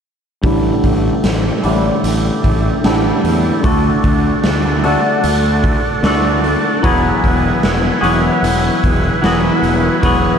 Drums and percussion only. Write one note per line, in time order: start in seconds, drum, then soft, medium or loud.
0.43 kick loud
0.43 open hi-hat medium
0.84 kick medium
0.84 open hi-hat soft
1.24 snare medium
1.24 open hi-hat medium
1.64 open hi-hat soft
2.04 open hi-hat medium
2.44 kick medium
2.44 open hi-hat soft
2.84 snare loud
2.84 open hi-hat medium
3.25 open hi-hat soft
3.64 kick loud
3.64 open hi-hat medium
4.04 kick medium
4.04 open hi-hat soft
4.44 snare loud
4.44 open hi-hat medium
4.84 open hi-hat soft
5.24 open hi-hat medium
5.64 kick medium
5.64 open hi-hat soft
6.04 snare loud
6.04 open hi-hat medium
6.44 open hi-hat soft
6.84 kick loud
6.84 open hi-hat medium
7.24 kick medium
7.24 open hi-hat soft
7.63 snare loud
7.63 open hi-hat medium
8.04 open hi-hat soft
8.44 open hi-hat medium
8.84 kick medium
8.84 open hi-hat medium
9.24 snare loud
9.24 open hi-hat medium
9.64 open hi-hat soft
10.03 kick loud
10.03 open hi-hat medium